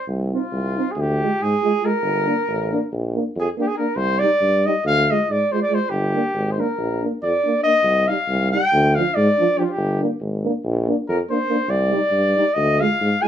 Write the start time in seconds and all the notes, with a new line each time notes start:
0.08 C2
0.33 C4 D#4 F4
0.52 C2
0.76 C4 D#4
0.91 G#4
0.96 D2
1.00 G4
1.21 G#3 F4
1.42 G#2 G#4
1.63 G#3 F4
1.82 G#3 F4 A#4
2.02 G1
2.26 A#3 D4
2.48 A1
2.72 A#3 D4
2.92 A#1
3.15 A#3 D4
3.36 F2 G#4
3.57 A#3 D4 G4
3.68 G#4
3.77 A#3 D4 A#4
3.96 C2 C5
4.19 G3 D#4 D5
4.41 G2
4.65 G3 D#4 D#5
4.84 D2 F5
5.10 G#3 F4 D#5
5.29 G#2 D5
5.52 G#3 F4 C5
5.63 D5
5.70 G#3 F4
5.75 C5
5.90 G1 G4
6.14 A#3 D4
6.34 G#1
6.52 C5
6.58 A#3 D4 A#4
6.78 A#1
7.01 A#3 D4
7.23 F2 D5
7.43 A#3 D4
7.62 A#3 D4 D#5
7.83 C2
8.07 G3 D#4 F5
8.28 C2
8.51 G3 D#4 G5
8.72 D2
8.95 F3 D4 F5
9.15 G#2 D5
9.38 F3 D4
9.57 F3 D4 G4
9.62 F4
9.70 G4
9.77 G1
10.00 A#3 D4
10.20 G#1
10.44 A#3 D4
10.64 A#1
10.88 A#3 D4
11.08 F2 A#4
11.30 A#3 D4 C5
11.49 A#3 D4
11.68 C2 D5
11.91 G3 D#4
12.11 G2
12.37 G3 D#4
12.54 D2 D#5
12.80 G#3 F4 F5
13.01 G#2
13.22 G#3 F4 G#5